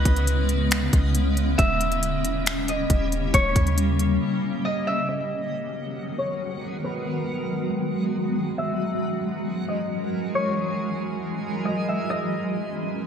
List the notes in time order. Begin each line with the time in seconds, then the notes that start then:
Already playing: C#3 G#3 B3 C#4 E4 B4 C#5 D#5
0.05 C#2, kick, closed hi-hat
0.16 closed hi-hat
0.27 closed hi-hat
0.49 closed hi-hat
0.71 finger snap, closed hi-hat
0.93 C#2, kick, closed hi-hat
1.15 closed hi-hat
1.37 closed hi-hat
1.58 D#1 G3 A#3 C#4 E4 G4 E5, kick, closed hi-hat
1.81 closed hi-hat
1.92 closed hi-hat
2.03 closed hi-hat
2.25 closed hi-hat
2.46 finger snap, closed hi-hat
2.68 D#5, closed hi-hat
2.90 D#1, kick, closed hi-hat
3.12 closed hi-hat
3.34 D#1 C#5 D#5, kick, closed hi-hat
3.56 D#2, kick, closed hi-hat
3.67 closed hi-hat
3.78 closed hi-hat
3.99 closed hi-hat
4.65 D#5
4.87 E5
5.09 D#3 F#3 G#3 B3 F#4 G#4 A#4 D#5 F#5
6.18 C#5
6.84 B4
8.58 E3 C#4 E4 G#4 A#4 E5
9.68 D#5
10.35 C#5 D#5 G#5
11.65 D#5
11.89 E5
12.09 E3 B3 C#4 E4 B4 D#5 D#6